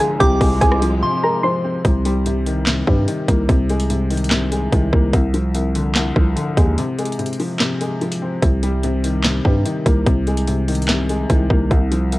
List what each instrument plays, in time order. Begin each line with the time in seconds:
Already playing: felt piano C2 D3 F3, string section C3 G#3 D4 F4
0.00 felt piano G#3, synth pluck G#4 G#5
0.20 808-style bass C2, felt piano C3, string section G#3 C4 F4, synth pluck G4 G5, synth bell D6, kick, closed hi-hat
0.41 808-style bass C2, felt piano G#3, kick, open hi-hat
0.61 808-style bass C2, felt piano C3, synth pluck G#4 G#5, kick, closed hi-hat
0.72 cross-stick
0.82 felt piano F3, closed hi-hat
1.02 felt piano C3, synth bell C6
1.23 felt piano G#3, synth pluck A#4 A#5
1.43 felt piano F3, synth pluck C5 C6
1.64 felt piano C4
1.85 808-style bass C2, felt piano C3, kick, closed hi-hat
2.05 felt piano G3, closed hi-hat
2.26 felt piano C3, closed hi-hat
2.46 felt piano D#3, closed hi-hat
2.66 felt piano C3, snare, clap, closed hi-hat
2.87 808-style bass G2, felt piano G3, kick
3.08 felt piano D#3, closed hi-hat
3.28 808-style bass C2, felt piano A#3, kick, closed hi-hat
3.49 808-style bass C2, felt piano C3, kick, closed hi-hat
3.70 felt piano G#3, closed hi-hat
3.80 closed hi-hat
3.90 felt piano C3, closed hi-hat
4.11 felt piano D#3, closed hi-hat, open hi-hat
4.18 closed hi-hat
4.24 closed hi-hat
4.31 felt piano C3, snare, clap, closed hi-hat
4.52 felt piano G#3, closed hi-hat
4.72 808-style bass C2, felt piano D#3, kick, closed hi-hat
4.93 808-style bass C2, felt piano A#3, kick
5.13 felt piano C2, 808-style bass C2, kick, closed hi-hat
5.34 felt piano F3, closed hi-hat
5.55 felt piano C2, closed hi-hat
5.75 felt piano D3, closed hi-hat
5.95 felt piano C2, snare, clap, closed hi-hat
6.16 808-style bass C2, felt piano F3, kick
6.36 felt piano D3, closed hi-hat
6.57 808-style bass D#2, felt piano G#3, kick, closed hi-hat
6.78 felt piano C3, closed hi-hat
6.98 felt piano G#3, closed hi-hat
7.05 closed hi-hat
7.12 closed hi-hat
7.19 felt piano C3, closed hi-hat
7.26 closed hi-hat
7.33 closed hi-hat
7.39 felt piano F3, open hi-hat
7.60 felt piano C3, snare, clap, closed hi-hat
7.81 felt piano G#3, closed hi-hat
8.01 felt piano F3, closed hi-hat
8.12 closed hi-hat
8.22 felt piano C4
8.42 808-style bass C2, felt piano C3, kick, closed hi-hat
8.63 felt piano G3, closed hi-hat
8.83 felt piano C3, closed hi-hat
9.04 felt piano D#3, closed hi-hat
9.24 felt piano C3, snare, clap, closed hi-hat
9.45 808-style bass G2, felt piano G3, kick
9.66 felt piano D#3, closed hi-hat
9.86 808-style bass C2, felt piano A#3, kick, closed hi-hat
10.07 808-style bass C2, felt piano C3, kick, closed hi-hat
10.27 felt piano G#3, closed hi-hat
10.37 closed hi-hat
10.48 felt piano C3, closed hi-hat
10.68 felt piano D#3, closed hi-hat, open hi-hat
10.75 closed hi-hat
10.82 closed hi-hat
10.88 felt piano C3, snare, clap, closed hi-hat
11.09 felt piano G#3, closed hi-hat
11.30 808-style bass C2, felt piano D#3, kick, closed hi-hat
11.50 808-style bass C2, felt piano A#3, kick
11.71 felt piano C2, 808-style bass C2, kick, closed hi-hat
11.91 felt piano F3, closed hi-hat
12.12 felt piano C2, closed hi-hat